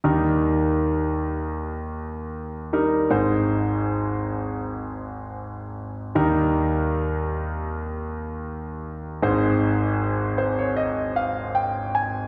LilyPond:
<<
  \new Staff \with { instrumentName = "Grand piano" } { \time 4/4 \key aes \major \tempo 4 = 78 << { r1 | r1 | r1 | r4. c''16 des''16 ees''8 f''8 g''8 aes''8 | } \\ { <g ees' bes'>2.~ <g ees' bes'>8 <g ees' bes'>8 | <aes ees' c''>1 | <g ees' bes'>1 | <aes ees' c''>1 | } >> }
  \new Staff \with { instrumentName = "Grand piano" } { \clef bass \time 4/4 \key aes \major <ees, ees>1 | <aes,, aes,>1 | <ees, ees>1 | <aes,, aes,>1 | }
>>